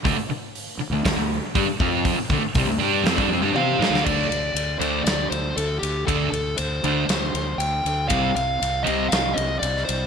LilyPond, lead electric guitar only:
\new Staff \with { instrumentName = "Lead electric guitar" } { \time 4/4 \key d \phrygian \tempo 4 = 119 r1 | r2. f''4 | d''8 d''4 c''8 d''8 c''8 a'8 g'8 | a'8 a'8 c''2 g''4 |
f''8 f''4 ees''8 f''8 ees''8 d''8 c''8 | }